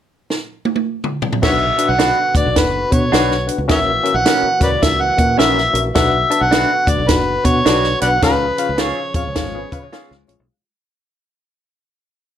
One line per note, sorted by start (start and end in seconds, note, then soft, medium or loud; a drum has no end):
0.30 snare medium
0.65 high tom medium
0.76 high tom medium
1.04 mid tom medium
1.22 floor tom medium
1.33 floor tom medium
1.42 1.70 B1 loud
1.42 2.31 B2 medium
1.42 3.67 D3 medium
1.42 3.67 B3 medium
1.42 1.64 D4 loud
1.42 3.67 F#4 medium
1.42 1.65 F#4 medium
1.42 1.65 B4 medium
1.42 1.50 C#5 medium
1.42 1.91 E5 loud
1.42 1.65 F#5 loud
1.42 kick medium
1.42 snare loud
1.42 crash medium
1.78 1.91 D4 medium
1.78 1.91 F#4 medium
1.78 1.92 B4 medium
1.78 1.92 F#5 loud
1.78 closed hi-hat medium
1.89 2.11 B1 medium
1.89 2.35 F#5 loud
1.98 2.17 D4 medium
1.98 2.21 D4 medium
1.98 2.18 F#4 medium
1.98 2.21 F#4 medium
1.98 2.18 B4 medium
1.98 2.22 B4 medium
1.98 2.21 F#5 medium
1.98 snare loud
1.98 closed hi-hat medium
2.34 2.43 D2 medium
2.34 2.48 D4 medium
2.34 2.48 F#4 medium
2.34 2.48 B4 medium
2.34 2.60 D5 medium
2.34 2.48 F#5 medium
2.34 kick loud
2.34 closed hi-hat medium
2.46 2.54 B1 medium
2.56 2.84 F#1 medium
2.56 2.78 D4 medium
2.56 2.78 F#4 medium
2.56 2.78 B4 medium
2.56 2.94 B4 medium
2.56 2.78 F#5 medium
2.56 kick medium
2.56 snare loud
2.56 closed hi-hat medium
2.90 3.08 B2 medium
2.90 3.04 D4 medium
2.90 3.04 F#4 medium
2.90 3.04 B4 medium
2.90 3.49 C#5 medium
2.90 3.04 F#5 medium
2.90 kick medium
2.90 closed hi-hat medium
3.12 3.48 B1 medium
3.12 3.31 D4 medium
3.12 3.34 D4 loud
3.12 3.34 F#4 medium
3.12 3.31 F#4 medium
3.12 3.34 B4 medium
3.12 3.32 B4 medium
3.12 3.35 F#5 loud
3.12 snare loud
3.12 closed hi-hat medium
3.31 snare soft
3.47 3.61 D4 medium
3.47 3.61 F#4 medium
3.47 3.61 B4 medium
3.47 3.61 F#5 medium
3.47 closed hi-hat medium
3.58 3.70 C#2 medium
3.68 3.97 A#1 loud
3.68 4.57 A#2 medium
3.68 5.94 E3 medium
3.68 5.94 A#3 medium
3.68 3.91 C#4 loud
3.68 3.91 F#4 loud
3.68 8.19 F#4 medium
3.68 3.91 A#4 medium
3.68 3.79 C#5 medium
3.68 3.91 E5 loud
3.68 4.18 E5 loud
3.68 kick loud
3.68 snare loud
3.68 closed hi-hat medium
4.04 4.17 C#4 loud
4.04 4.17 F#4 medium
4.04 4.17 A#4 medium
4.04 4.17 E5 loud
4.04 closed hi-hat medium
4.14 4.23 A#1 loud
4.14 4.62 F#5 loud
4.25 4.48 C#4 medium
4.25 4.45 C#4 medium
4.25 4.45 E4 medium
4.25 4.48 F#4 medium
4.25 4.48 A#4 medium
4.25 4.45 A#4 medium
4.25 4.48 E5 medium
4.25 snare loud
4.25 closed hi-hat loud
4.43 muted fingered electric bass stroke soft
4.60 4.78 C#2 medium
4.60 4.74 C#4 medium
4.60 4.74 F#4 medium
4.60 4.74 A#4 medium
4.60 4.70 B4 medium
4.60 4.74 C#5 medium
4.60 4.85 D5 medium
4.60 kick loud
4.60 closed hi-hat medium
4.82 5.10 C#2 medium
4.82 5.05 C#4 medium
4.82 5.04 F#4 medium
4.82 5.05 A#4 medium
4.82 5.04 E5 medium
4.82 5.03 E5 medium
4.82 kick medium
4.82 snare loud
4.82 closed hi-hat loud
5.01 5.38 F#5 loud
5.17 5.35 A#2 loud
5.17 5.31 C#4 medium
5.17 5.31 F#4 medium
5.17 5.31 A#4 medium
5.17 5.31 E5 medium
5.17 kick medium
5.17 closed hi-hat medium
5.37 5.67 A#1 medium
5.37 5.57 C#4 medium
5.37 5.61 C#4 loud
5.37 5.57 E4 medium
5.37 5.61 F#4 medium
5.37 5.61 A#4 medium
5.37 5.58 A#4 medium
5.37 5.82 E5 loud
5.37 5.61 E5 loud
5.37 snare loud
5.37 closed hi-hat medium
5.58 snare soft
5.73 5.91 A#1 medium
5.73 5.87 C#4 medium
5.73 5.87 F#4 medium
5.73 5.87 A#4 medium
5.73 5.88 E5 medium
5.73 closed hi-hat medium
5.94 6.23 B1 loud
5.94 6.84 B2 medium
5.94 8.20 D3 medium
5.94 8.20 B3 medium
5.94 6.17 D4 loud
5.94 6.17 F#4 loud
5.94 6.17 B4 medium
5.94 6.43 E5 loud
5.94 6.18 F#5 loud
5.94 kick loud
5.94 snare loud
5.94 closed hi-hat medium
6.30 6.44 D4 medium
6.30 6.44 F#4 medium
6.30 6.44 B4 medium
6.30 6.44 A5 loud
6.30 closed hi-hat medium
6.41 6.64 B1 medium
6.41 6.90 F#5 loud
6.51 6.70 D4 medium
6.51 6.74 D4 medium
6.51 6.74 F#4 medium
6.51 6.71 F#4 medium
6.51 6.74 B4 medium
6.51 6.71 B4 loud
6.51 6.74 E5 medium
6.51 snare loud
6.51 closed hi-hat medium
6.87 6.96 D2 medium
6.87 7.01 D4 medium
6.87 7.01 F#4 medium
6.87 7.01 B4 medium
6.87 7.01 D5 medium
6.87 7.10 D5 medium
6.87 kick loud
6.87 closed hi-hat medium
6.98 7.07 B1 medium
7.09 7.36 F#1 medium
7.09 7.31 D4 medium
7.09 7.31 F#4 medium
7.09 7.47 B4 medium
7.09 7.32 B4 medium
7.09 7.32 F#5 medium
7.09 kick medium
7.09 snare loud
7.09 closed hi-hat medium
7.44 7.61 B2 loud
7.44 7.58 D4 medium
7.44 7.58 F#4 medium
7.44 7.58 B4 medium
7.44 8.01 C#5 loud
7.44 7.58 F#5 medium
7.44 kick medium
7.44 closed hi-hat medium
7.65 7.94 B1 loud
7.65 7.84 D4 medium
7.65 7.88 D4 loud
7.65 7.84 F#4 medium
7.65 7.88 F#4 medium
7.65 7.85 B4 medium
7.65 7.89 B4 medium
7.65 7.89 D5 loud
7.65 snare loud
7.65 closed hi-hat medium
7.83 snare soft
8.01 8.18 B1 medium
8.01 8.15 D4 medium
8.01 8.15 F#4 medium
8.01 8.09 B4 medium
8.01 8.15 B4 medium
8.01 8.08 D5 medium
8.01 8.21 F#5 medium
8.01 8.15 F#5 medium
8.01 closed hi-hat medium
8.21 8.50 C#2 loud
8.21 9.11 C#3 medium
8.21 10.47 F3 medium
8.21 10.48 C#4 medium
8.21 8.45 C#4 loud
8.21 8.45 F4 medium
8.21 10.47 G#4 medium
8.21 8.45 G#4 medium
8.21 8.82 B4 loud
8.21 8.45 F5 loud
8.21 kick loud
8.21 snare loud
8.21 closed hi-hat medium
8.58 8.71 C#4 medium
8.58 8.72 F4 medium
8.58 8.72 G#4 medium
8.58 8.72 F5 loud
8.58 closed hi-hat medium
8.69 8.91 C#2 medium
8.78 9.01 C#4 medium
8.78 8.98 F4 medium
8.78 9.01 F4 medium
8.78 9.02 G#4 medium
8.78 8.98 G#4 medium
8.78 8.98 C#5 medium
8.78 9.14 C#5 medium
8.78 9.02 F5 medium
8.78 snare loud
8.78 closed hi-hat medium
9.14 9.23 F2 medium
9.14 9.29 C#4 medium
9.14 9.29 F4 medium
9.14 9.29 G#4 medium
9.14 10.25 C#5 medium
9.14 9.29 F5 medium
9.14 kick loud
9.14 closed hi-hat medium
9.27 9.35 C#2 medium
9.36 9.64 G#1 medium
9.36 9.54 G#3 medium
9.36 9.58 C#4 medium
9.36 9.53 F4 medium
9.36 9.58 F4 medium
9.36 9.58 G#4 medium
9.36 9.58 F5 medium
9.36 kick medium
9.36 snare loud
9.36 closed hi-hat medium
9.54 9.71 B3 medium
9.54 9.71 G#4 medium
9.72 9.89 C#3 medium
9.72 9.85 C#4 medium
9.72 9.86 F4 medium
9.72 9.85 G#4 medium
9.72 9.82 B4 medium
9.72 9.86 F5 medium
9.72 kick loud
9.72 closed hi-hat medium
9.82 9.92 F4 medium
9.82 9.93 C#5 medium
9.92 10.10 B3 medium
9.92 10.15 C#4 loud
9.92 10.11 F4 medium
9.92 10.15 F4 loud
9.92 10.10 G#4 medium
9.92 10.11 G#4 medium
9.92 10.15 G#4 loud
9.92 10.12 C#5 medium
9.92 10.15 F5 loud
9.92 snare loud
9.92 closed hi-hat medium
10.11 10.25 C#2 loud
10.11 10.49 G#3 medium
10.11 10.48 F4 medium
10.11 snare soft
10.28 10.37 A1 medium
10.28 10.41 C#4 medium
10.28 10.42 F4 medium
10.28 10.42 G#4 medium
10.28 10.42 C#5 medium
10.28 closed hi-hat medium
10.40 10.48 B1 medium